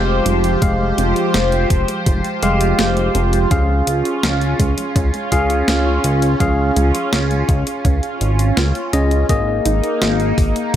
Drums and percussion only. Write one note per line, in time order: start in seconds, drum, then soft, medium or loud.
0.26 closed hi-hat medium
0.44 closed hi-hat medium
0.62 kick loud
0.62 closed hi-hat medium
0.98 closed hi-hat medium
1.16 closed hi-hat medium
1.34 snare loud
1.34 closed hi-hat medium
1.52 closed hi-hat soft
1.70 kick loud
1.70 closed hi-hat medium
1.88 closed hi-hat medium
2.06 kick loud
2.06 closed hi-hat medium
2.24 closed hi-hat soft
2.43 closed hi-hat medium
2.61 closed hi-hat medium
2.79 snare loud
2.79 closed hi-hat medium
2.97 closed hi-hat soft
3.15 closed hi-hat medium
3.33 closed hi-hat medium
3.51 kick loud
3.51 closed hi-hat medium
3.87 closed hi-hat medium
4.05 closed hi-hat medium
4.23 snare loud
4.23 closed hi-hat medium
4.41 closed hi-hat soft
4.60 kick loud
4.60 closed hi-hat medium
4.78 closed hi-hat medium
4.96 kick loud
4.96 closed hi-hat medium
5.14 closed hi-hat soft
5.32 kick medium
5.32 closed hi-hat medium
5.50 closed hi-hat medium
5.68 snare loud
5.68 closed hi-hat medium
6.04 closed hi-hat medium
6.22 closed hi-hat medium
6.40 kick loud
6.40 closed hi-hat medium
6.76 closed hi-hat medium
6.95 closed hi-hat medium
7.13 snare loud
7.13 closed hi-hat medium
7.31 closed hi-hat soft
7.49 kick loud
7.49 closed hi-hat medium
7.67 closed hi-hat medium
7.85 kick loud
7.85 closed hi-hat medium
8.03 closed hi-hat soft
8.21 closed hi-hat medium
8.39 closed hi-hat medium
8.57 snare loud
8.57 closed hi-hat medium
8.75 closed hi-hat soft
8.93 closed hi-hat medium
9.11 closed hi-hat medium
9.29 kick loud
9.29 closed hi-hat medium
9.65 closed hi-hat medium
9.84 closed hi-hat medium
10.02 snare loud
10.02 closed hi-hat medium
10.20 closed hi-hat soft
10.38 kick loud
10.38 open hi-hat medium
10.56 closed hi-hat medium